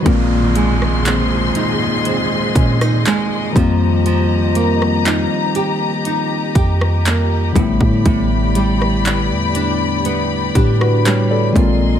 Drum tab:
HH |x-x-x-x-x-x-x-x-|x-x-x-x-x-x-x-x-|x-x-x-x-x-x-x-x-|
CP |----x-------x---|----x-------x---|----x-------x---|
SD |---r-------r----|---r-------r----|---r-------r----|
BD |o---------o---o-|----------o---oo|o---------o---o-|